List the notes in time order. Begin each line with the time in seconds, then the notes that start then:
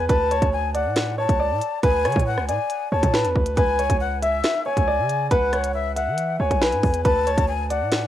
0.09 D2 B4 A5, kick, closed hi-hat
0.31 C#5, closed hi-hat
0.42 D2, kick, closed hi-hat
0.53 G#5
0.75 D5 F#5, closed hi-hat
0.85 A2
0.96 snare, closed hi-hat
1.18 C#5 A5
1.29 C#2, kick, closed hi-hat
1.40 D5
1.51 A2
1.61 closed hi-hat
1.83 D2 B4 G#5, kick, closed hi-hat
2.05 D3 C#5, cross-stick, closed hi-hat
2.12 A2, kick, closed hi-hat
2.20 closed hi-hat
2.27 F#5
2.38 C#2, cross-stick
2.48 A2 D5 G#5, closed hi-hat
2.70 closed hi-hat
2.92 D2 C#5 A5
3.03 A2, kick, closed hi-hat
3.14 B4, snare
3.25 E2, closed hi-hat
3.36 D2, kick
3.46 closed hi-hat
3.56 C#2 B4 G#5, kick, closed hi-hat
3.79 C#5, closed hi-hat
3.90 C#2, kick, closed hi-hat
4.00 F#5
4.22 E5, closed hi-hat
4.44 snare, closed hi-hat
4.66 C#5 G#5
4.77 C#2, kick, closed hi-hat
4.88 D5
4.99 C#3
5.09 closed hi-hat
5.31 C#2 B4 F#5, kick, closed hi-hat
5.53 C#5, cross-stick, closed hi-hat
5.64 closed hi-hat
5.74 E5
5.96 E5 F#5, closed hi-hat
6.07 E3
6.18 closed hi-hat
6.39 C#2 C#5 G#5
6.51 B1, kick, closed hi-hat
6.62 B4, snare
6.72 G#2, closed hi-hat
6.83 E2, kick, closed hi-hat, open hi-hat
6.94 closed hi-hat
7.05 D2 B4 A5, kick, closed hi-hat
7.27 C#5, closed hi-hat
7.38 D2, kick, closed hi-hat
7.48 G#5
7.70 D5 F#5, closed hi-hat
7.81 A2
7.92 snare, closed hi-hat